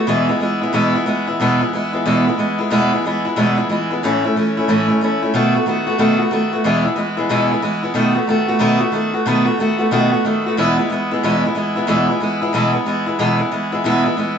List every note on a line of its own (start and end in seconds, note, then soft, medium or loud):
0.07 0.29 E2 medium
0.07 0.29 B2 medium
0.07 0.29 E3 loud
0.07 0.29 G#3 medium
0.07 0.28 B3 loud
0.07 0.27 E4 loud
0.28 0.39 E3 medium
0.28 0.40 G#3 medium
0.28 0.41 B3 medium
0.28 0.40 E4 medium
0.40 0.62 E3 medium
0.40 0.62 G#3 medium
0.40 0.62 B3 medium
0.40 0.60 E4 medium
0.61 0.72 E3 medium
0.61 0.73 G#3 medium
0.61 0.73 B3 medium
0.61 0.73 E4 medium
0.73 0.94 E2 medium
0.73 0.94 B2 medium
0.73 0.95 E3 loud
0.73 0.95 G#3 medium
0.73 0.95 B3 loud
0.73 0.94 E4 loud
0.95 1.05 E3 soft
0.95 1.06 G#3 medium
0.95 1.06 B3 medium
0.95 1.07 E4 medium
1.06 1.27 E3 medium
1.06 1.28 G#3 medium
1.06 1.27 B3 medium
1.06 1.26 E4 medium
1.27 1.40 E3 soft
1.27 1.40 G#3 soft
1.27 1.40 B3 medium
1.27 1.39 E4 medium
1.40 1.61 E2 medium
1.40 1.61 B2 loud
1.40 1.62 E3 loud
1.40 1.62 G#3 loud
1.40 1.61 B3 loud
1.40 1.60 E4 medium
1.61 1.72 E3 soft
1.61 1.73 G#3 medium
1.61 1.73 B3 medium
1.61 1.72 E4 medium
1.73 1.94 E3 medium
1.73 1.94 G#3 medium
1.73 1.93 B3 medium
1.73 1.92 E4 medium
1.93 2.05 E3 medium
1.93 2.05 G#3 medium
1.93 2.05 B3 medium
1.93 2.05 E4 medium
2.06 2.26 E2 medium
2.06 2.26 B2 medium
2.06 2.27 E3 medium
2.06 2.27 G#3 loud
2.06 2.26 B3 loud
2.06 2.25 E4 loud
2.27 2.36 E3 soft
2.27 2.38 G#3 medium
2.27 2.39 B3 medium
2.27 2.38 E4 medium
2.38 2.59 E3 medium
2.38 2.60 G#3 medium
2.38 2.59 B3 medium
2.38 2.57 E4 medium
2.59 2.70 E3 medium
2.59 2.70 G#3 medium
2.59 2.71 B3 medium
2.59 2.71 E4 medium
2.70 2.92 E2 medium
2.70 2.92 B2 medium
2.70 2.92 E3 medium
2.70 2.92 G#3 loud
2.70 2.92 B3 loud
2.70 2.91 E4 loud
2.92 3.03 E3 soft
2.92 3.05 G#3 medium
2.92 3.04 B3 medium
2.92 3.04 E4 medium
3.04 3.25 E3 medium
3.04 3.26 G#3 medium
3.04 3.25 B3 medium
3.04 3.24 E4 medium
3.25 3.36 E3 medium
3.25 3.36 G#3 medium
3.25 3.37 B3 medium
3.25 3.36 E4 medium
3.36 3.57 E2 medium
3.36 3.58 B2 medium
3.36 3.58 E3 medium
3.36 3.58 G#3 loud
3.36 3.58 B3 medium
3.36 3.56 E4 medium
3.58 3.68 E3 medium
3.58 3.69 G#3 medium
3.58 3.70 B3 medium
3.58 3.69 E4 medium
3.69 3.90 E3 medium
3.69 3.91 G#3 medium
3.69 3.91 B3 medium
3.69 3.89 E4 medium
3.91 4.03 E3 soft
3.91 4.03 G#3 medium
3.91 4.03 B3 medium
3.91 4.02 E4 medium
4.03 4.24 A2 medium
4.03 4.24 E3 loud
4.03 4.25 A3 loud
4.03 4.24 C#4 loud
4.03 4.23 E4 loud
4.24 4.36 A3 medium
4.24 4.36 C#4 medium
4.24 4.35 E4 medium
4.36 4.57 E3 medium
4.36 4.57 A3 medium
4.36 4.58 C#4 medium
4.36 4.56 E4 medium
4.57 4.68 A3 medium
4.57 4.69 C#4 medium
4.57 4.68 E4 medium
4.68 4.89 A2 medium
4.68 4.89 E3 loud
4.68 4.89 A3 medium
4.68 4.89 C#4 loud
4.68 4.87 E4 loud
4.88 5.01 A3 soft
4.88 5.01 C#4 medium
4.88 5.00 E4 medium
5.01 5.22 E3 medium
5.01 5.23 A3 medium
5.01 5.23 C#4 medium
5.01 5.21 E4 medium
5.22 5.34 A3 soft
5.22 5.34 C#4 medium
5.22 5.34 E4 medium
5.34 5.54 B2 loud
5.34 5.55 D#3 medium
5.34 5.55 A3 loud
5.34 5.55 B3 loud
5.34 5.54 F#4 loud
5.55 5.66 A3 medium
5.55 5.67 B3 medium
5.55 5.66 F#4 medium
5.66 5.87 D#3 medium
5.66 5.87 A3 medium
5.66 5.87 B3 medium
5.66 5.85 F#4 medium
5.87 5.98 A3 medium
5.87 5.98 B3 medium
5.87 5.98 F#4 medium
5.98 6.20 B2 medium
5.98 6.20 D#3 medium
5.98 6.20 A3 medium
5.98 6.20 B3 loud
5.98 6.18 F#4 loud
6.19 6.31 A3 soft
6.19 6.32 B3 medium
6.19 6.31 F#4 medium
6.31 6.52 D#3 medium
6.31 6.53 A3 medium
6.31 6.53 B3 medium
6.31 6.51 F#4 medium
6.53 6.65 A3 medium
6.53 6.65 B3 medium
6.53 6.64 F#4 medium
6.64 6.85 E2 medium
6.64 6.85 B2 medium
6.64 6.86 E3 loud
6.64 6.86 G#3 loud
6.64 6.85 B3 loud
6.64 6.84 E4 loud
6.85 6.95 E3 soft
6.85 6.96 G#3 medium
6.85 6.97 B3 medium
6.85 6.97 E4 medium
6.96 7.18 E3 medium
6.96 7.17 G#3 medium
6.96 7.16 B3 medium
6.96 7.16 E4 medium
7.17 7.29 E3 medium
7.17 7.29 G#3 medium
7.17 7.29 B3 medium
7.17 7.29 E4 medium
7.29 7.51 E2 medium
7.29 7.51 B2 medium
7.29 7.51 E3 loud
7.29 7.51 G#3 loud
7.29 7.52 B3 medium
7.29 7.50 E4 loud
7.51 7.61 E3 soft
7.51 7.62 G#3 medium
7.51 7.63 B3 medium
7.51 7.63 E4 medium
7.62 7.83 E3 medium
7.62 7.84 G#3 medium
7.62 7.83 B3 medium
7.62 7.82 E4 medium
7.83 7.94 E3 soft
7.83 7.95 G#3 soft
7.83 7.94 B3 medium
7.83 7.95 E4 medium
7.94 8.16 B2 medium
7.94 8.16 D#3 medium
7.94 8.16 A3 loud
7.94 8.16 B3 medium
7.94 8.14 F#4 loud
8.15 8.27 A3 medium
8.15 8.28 B3 medium
8.15 8.27 F#4 medium
8.27 8.49 D#3 medium
8.27 8.49 A3 medium
8.27 8.48 B3 medium
8.27 8.47 F#4 medium
8.48 8.59 A3 medium
8.48 8.60 B3 medium
8.48 8.60 F#4 medium
8.59 8.81 B2 medium
8.59 8.81 D#3 loud
8.59 8.82 A3 loud
8.59 8.80 B3 loud
8.59 8.79 F#4 loud
8.80 8.92 A3 medium
8.80 8.93 B3 medium
8.80 8.93 F#4 medium
8.92 9.14 D#3 medium
8.92 9.14 A3 medium
8.92 9.14 B3 medium
8.92 9.12 F#4 medium
9.14 9.26 A3 soft
9.14 9.26 B3 soft
9.14 9.26 F#4 medium
9.26 9.47 B2 loud
9.26 9.47 D#3 loud
9.26 9.47 A3 medium
9.26 9.46 B3 loud
9.26 9.44 F#4 loud
9.45 9.59 A3 medium
9.45 9.59 B3 medium
9.45 9.58 F#4 medium
9.59 9.80 D#3 medium
9.59 9.80 A3 medium
9.59 9.79 B3 medium
9.59 9.77 F#4 medium
9.78 9.91 A3 medium
9.78 9.91 B3 medium
9.78 9.91 F#4 medium
9.91 10.12 B2 medium
9.91 10.13 D#3 medium
9.91 10.13 A3 medium
9.91 10.12 B3 loud
9.91 10.10 F#4 loud
10.11 10.25 A3 soft
10.11 10.24 B3 medium
10.11 10.24 F#4 medium
10.25 10.46 D#3 medium
10.25 10.46 A3 medium
10.25 10.46 B3 medium
10.25 10.45 F#4 medium
10.46 10.58 A3 medium
10.46 10.58 B3 medium
10.46 10.57 F#4 medium
10.57 10.78 E2 medium
10.57 10.78 B2 medium
10.57 10.79 E3 loud
10.57 10.79 G#3 loud
10.57 10.78 B3 loud
10.57 10.77 E4 loud
10.78 10.88 E3 soft
10.78 10.89 G#3 medium
10.78 10.90 B3 medium
10.78 10.90 E4 medium
10.90 11.11 E3 medium
10.90 11.11 G#3 medium
10.90 11.11 B3 medium
10.90 11.10 E4 medium
11.11 11.23 E3 medium
11.11 11.23 G#3 medium
11.11 11.23 B3 medium
11.11 11.23 E4 medium
11.23 11.44 E2 medium
11.23 11.44 B2 medium
11.23 11.44 E3 medium
11.23 11.44 G#3 loud
11.23 11.45 B3 loud
11.23 11.44 E4 loud
11.45 11.54 E3 medium
11.45 11.55 G#3 medium
11.45 11.56 B3 medium
11.45 11.56 E4 medium
11.55 11.76 E3 medium
11.55 11.77 G#3 medium
11.55 11.76 B3 medium
11.55 11.74 E4 medium
11.76 11.87 E3 medium
11.76 11.87 G#3 medium
11.76 11.88 B3 medium
11.76 11.87 E4 medium
11.87 12.09 E2 loud
11.87 12.09 B2 medium
11.87 12.09 E3 loud
11.87 12.09 G#3 medium
11.87 12.08 B3 loud
11.87 12.07 E4 loud
12.09 12.19 E3 medium
12.09 12.20 G#3 medium
12.09 12.21 B3 medium
12.09 12.20 E4 medium
12.20 12.42 E3 medium
12.20 12.42 G#3 medium
12.20 12.41 B3 medium
12.20 12.40 E4 medium
12.42 12.53 E3 medium
12.42 12.54 G#3 medium
12.42 12.53 B3 medium
12.42 12.53 E4 medium
12.53 12.74 E2 medium
12.53 12.75 B2 medium
12.53 12.74 E3 medium
12.53 12.74 G#3 medium
12.53 12.73 B3 loud
12.53 12.72 E4 loud
12.73 12.85 E3 soft
12.73 12.85 G#3 medium
12.73 12.86 B3 medium
12.73 12.85 E4 medium
12.86 13.07 E3 medium
12.86 13.07 G#3 medium
12.86 13.06 B3 medium
12.86 13.05 E4 medium
13.06 13.18 E3 soft
13.06 13.19 G#3 medium
13.06 13.19 B3 medium
13.06 13.18 E4 medium
13.19 13.40 E2 medium
13.19 13.40 B2 loud
13.19 13.40 E3 loud
13.19 13.40 G#3 medium
13.19 13.39 B3 loud
13.19 13.38 E4 loud
13.39 13.50 E3 soft
13.39 13.50 G#3 medium
13.39 13.51 B3 medium
13.39 13.51 E4 medium
13.51 13.72 E3 medium
13.51 13.73 G#3 medium
13.51 13.72 B3 medium
13.51 13.71 E4 medium
13.72 13.84 E3 medium
13.72 13.85 G#3 medium
13.72 13.84 B3 medium
13.72 13.84 E4 medium
13.84 14.05 E2 loud
13.84 14.06 B2 medium
13.84 14.06 E3 medium
13.84 14.06 G#3 medium
13.84 14.05 B3 loud
13.84 14.04 E4 loud
14.05 14.16 E3 medium
14.05 14.17 G#3 medium
14.05 14.17 B3 medium
14.05 14.17 E4 medium
14.17 14.38 E3 medium
14.17 14.38 G#3 medium
14.17 14.37 B3 medium
14.17 14.36 E4 medium